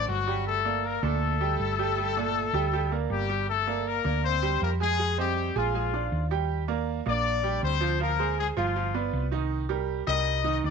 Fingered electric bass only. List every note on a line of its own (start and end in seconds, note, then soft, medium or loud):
0.08 0.97 G1 medium
1.03 1.56 D2 loud
1.60 2.48 G1 loud
2.53 3.06 D2 medium
3.10 3.99 G1 loud
4.05 4.58 D2 loud
4.62 5.50 F2 medium
5.56 6.08 A#1 medium
6.12 7.00 D#2 medium
7.06 7.59 A#1 loud
7.63 8.51 D2 medium
8.57 9.09 G1 loud
9.13 10.01 C2 medium
10.07 10.60 C2 loud
10.64 10.70 D2 medium